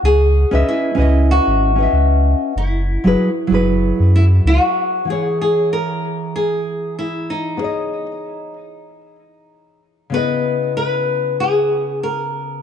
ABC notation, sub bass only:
X:1
M:4/4
L:1/16
Q:"Swing 16ths" 1/4=95
K:Elyd
V:1 name="Sub bass" clef=bass
C,,3 C,, z2 C,,3 G,,,3 C,,3 z | F,,,3 F,,, z2 F,,,3 F,,3 C,, z3 | z16 | z16 |
z16 |]